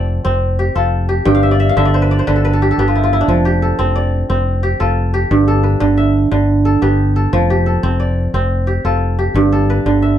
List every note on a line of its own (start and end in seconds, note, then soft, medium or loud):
0.00 0.18 F1 medium
0.00 1.32 F3 medium
0.00 0.24 C4 medium
0.00 0.58 F4 medium
0.00 0.59 G4 medium
0.00 0.75 A4 medium
0.00 1.02 D5 medium
0.25 0.69 F1 medium
0.25 2.08 C4 medium
0.59 1.08 G4 medium
0.75 1.19 F1 medium
0.75 1.49 F4 medium
0.75 2.07 A4 medium
1.09 2.50 G4 medium
1.25 1.70 G1 medium
1.25 3.34 G2 medium
1.25 2.19 G5 medium
1.35 1.66 F5 medium
1.43 1.59 E5 medium
1.51 1.85 D5 medium
1.60 1.77 E5 medium
1.69 2.69 F5 medium
1.77 2.20 G1 medium
1.77 2.26 D3 medium
1.77 2.81 E5 medium
1.85 2.11 D5 medium
1.94 2.19 C5 medium
2.02 2.25 B4 medium
2.11 3.22 D5 medium
2.19 2.51 C5 medium
2.27 2.71 G1 medium
2.27 3.34 D3 medium
2.27 2.44 B4 medium
2.36 2.53 A4 medium
2.45 3.68 B4 medium
2.53 2.71 A4 medium
2.62 2.79 G4 medium
2.71 3.62 A4 medium
2.78 3.21 G1 medium
2.78 3.85 B3 medium
2.78 3.45 G4 medium
2.88 3.03 F4 medium
2.96 3.13 E4 medium
3.04 4.55 F4 medium
3.13 3.35 E4 medium
3.21 4.89 D4 medium
3.28 3.72 F1 loud
3.28 5.36 F3 medium
3.45 4.63 G4 medium
3.62 4.79 A4 medium
3.79 4.23 F1 medium
3.79 4.29 C4 medium
3.96 5.06 D5 medium
4.30 4.73 F1 medium
4.30 5.69 C4 medium
4.63 5.13 G4 medium
4.80 5.24 F1 medium
4.80 6.03 F4 medium
4.80 5.47 A4 medium
5.14 6.55 G4 medium
5.31 5.74 G1 loud
5.31 7.38 G2 medium
5.48 6.65 A4 medium
5.63 6.86 B4 medium
5.80 6.25 G1 medium
5.80 6.30 D3 medium
5.97 7.01 E5 medium
6.31 6.75 G1 medium
6.31 7.38 D3 medium
6.65 7.16 A4 medium
6.82 7.26 G1 medium
6.82 7.89 B3 medium
6.82 7.50 G4 medium
7.16 7.66 A4 medium
7.33 7.76 F1 loud
7.33 9.40 F3 medium
7.50 8.67 G4 medium
7.66 8.84 A4 medium
7.83 8.27 F1 medium
7.83 8.34 C4 medium
8.00 9.10 D5 medium
8.34 8.77 F1 medium
8.34 9.76 C4 medium
8.67 9.18 G4 medium
8.84 9.28 F1 medium
8.84 10.08 F4 medium
8.84 9.52 A4 medium
9.19 10.19 G4 medium
9.34 9.78 G1 medium
9.34 10.19 G2 medium
9.52 10.19 A4 medium
9.70 10.19 B4 medium
9.86 10.19 G1 medium
9.86 10.19 D3 medium
10.02 10.19 E5 medium